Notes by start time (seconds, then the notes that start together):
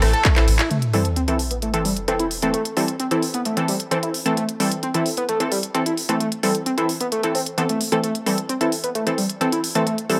0.02 A1 E3 A3 C4 A4, cross-stick, open hi-hat, ride
0.13 A4, closed hi-hat
0.25 A3, kick, clap, closed hi-hat, ride
0.36 A1 E3 C4 E4 A4, clap, closed hi-hat
0.48 A1, open hi-hat, ride
0.59 E4, clap, closed hi-hat
0.71 A3, closed hi-hat, sub drop
0.82 closed hi-hat
0.93 E3 G3 C4 A4, open hi-hat
1.05 closed hi-hat
1.16 C4, closed hi-hat
1.28 E3 C4 E4 A4, closed hi-hat
1.39 open hi-hat
1.51 B3, closed hi-hat
1.62 A3, closed hi-hat
1.74 E3 C4 A4, closed hi-hat
1.85 G3, open hi-hat
1.97 closed hi-hat
2.08 E3 C4 A4, closed hi-hat
2.20 E4, closed hi-hat
2.31 open hi-hat
2.42 E3 A3 C4 A4, closed hi-hat
2.54 A3, closed hi-hat
2.65 closed hi-hat
2.77 E3 G3 C4 A4, open hi-hat
2.88 closed hi-hat
3.00 C4, closed hi-hat
3.11 E3 C4 E4 A4, closed hi-hat
3.23 open hi-hat
3.34 B3, closed hi-hat
3.45 A3, closed hi-hat
3.57 E3 C4 A4, closed hi-hat
3.68 G3, open hi-hat
3.80 closed hi-hat
3.91 E3 C4 A4, closed hi-hat
4.03 E4, closed hi-hat
4.14 open hi-hat
4.26 E3 A3 C4 A4, closed hi-hat
4.37 A3, closed hi-hat
4.49 closed hi-hat
4.60 E3 G3 C4 A4, open hi-hat
4.72 closed hi-hat
4.83 C4, closed hi-hat
4.94 E3 C4 E4 A4, closed hi-hat
5.06 open hi-hat
5.17 B3, closed hi-hat
5.29 A3, closed hi-hat
5.40 E3 C4 A4, closed hi-hat
5.52 G3, open hi-hat
5.63 closed hi-hat
5.75 E3 C4 A4, closed hi-hat
5.86 E4, closed hi-hat
5.97 open hi-hat
6.09 E3 A3 C4 A4, closed hi-hat
6.20 A3, closed hi-hat
6.32 closed hi-hat
6.43 E3 G3 C4 A4, open hi-hat
6.55 closed hi-hat
6.66 C4, closed hi-hat
6.78 E3 C4 E4 A4, closed hi-hat
6.89 open hi-hat
7.00 B3, closed hi-hat
7.12 A3, closed hi-hat
7.23 E3 C4 A4, closed hi-hat
7.35 C4, open hi-hat
7.46 closed hi-hat
7.58 E3 B3 C4 A4, closed hi-hat
7.69 A3, closed hi-hat
7.81 open hi-hat
7.92 E3 A3 C4 A4, closed hi-hat
8.04 A3, closed hi-hat
8.15 closed hi-hat
8.26 E3 G3 C4 A4, open hi-hat
8.38 closed hi-hat
8.49 C4, closed hi-hat
8.61 E3 C4 E4 A4, closed hi-hat
8.72 open hi-hat
8.84 B3, closed hi-hat
8.95 A3, closed hi-hat
9.07 E3 C4 A4, closed hi-hat
9.18 G3, open hi-hat
9.30 closed hi-hat
9.41 E3 C4 A4, closed hi-hat
9.52 E4, closed hi-hat
9.64 open hi-hat
9.75 E3 A3 C4 A4, closed hi-hat
9.87 A3, closed hi-hat
9.98 closed hi-hat
10.10 E3 G3 C4 A4, open hi-hat